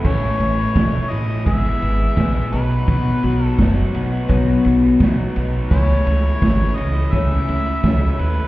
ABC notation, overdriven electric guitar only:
X:1
M:4/4
L:1/16
Q:1/4=85
K:Alyd
V:1 name="Overdriven electric guitar"
[A,,E,A,CE]2 [E,A,CE] [A,CE] [A,,E,A,CE]2 [E,A,CE] [A,CE] [G,B,EG] [B,EG] [G,B,EG] [B,EG] [G,B,EG] [B,EG] [B,,F,B,DF]2 | [B,,F,B,DF]2 [F,B,DF] [B,DF] [B,,F,B,DF]2 [F,B,DF] [B,DF]2 [B,DF] [F,B,DF] [B,DF] [B,,F,B,DF] [B,DF] [F,B,DF]2 | [C,E,A,CE]2 [E,A,CE] [A,CE] [C,E,A,CE]2 [E,A,CE] [A,CE]2 [A,CE] [E,A,CE] [A,CE] [C,E,A,CE] [A,CE] [E,A,CE]2 |]